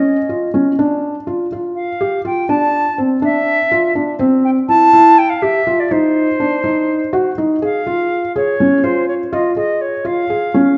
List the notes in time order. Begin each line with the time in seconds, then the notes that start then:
Already playing: C#4 D#5
0.29 F4
0.54 C#4
0.79 D4
1.27 F4
1.52 F4
1.75 F5
2.01 G4
2.25 F4 G5
2.49 D4 A5
2.98 C4
3.22 D4 E5
3.71 F4
3.95 D4
4.19 C4
4.44 G5
4.68 E4 A5
4.93 E4
5.18 G5
5.29 F5
5.42 G4 E5
5.67 F4
5.79 D5
5.91 D#4 C5
6.40 D4
6.64 D#4
7.13 F#4
7.38 D#4
7.62 G#4 F5
7.87 F4
8.36 G#4 C#5
8.60 C#4
8.83 F4 C5
9.08 C#5
9.31 F4 D#5
9.56 G#4 D#5
9.81 C#5
10.05 F4 F5
10.30 G#4
10.54 C#4